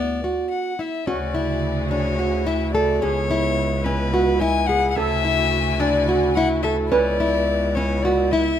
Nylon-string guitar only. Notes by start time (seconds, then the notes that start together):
Already playing: B3
0.24 F#4
0.79 E4
1.07 C#4
1.35 E4
1.91 D4
2.19 F#4
2.47 E4
2.75 A4
3.02 C#4
3.31 E4
3.86 C#4
4.14 F#4
4.41 E4
4.69 G#4
4.96 C#4
5.25 E4
5.80 D4
6.09 F#4
6.37 E4
6.64 A4
6.92 C#4
7.20 E4
7.77 C#4
8.05 F#4
8.33 E4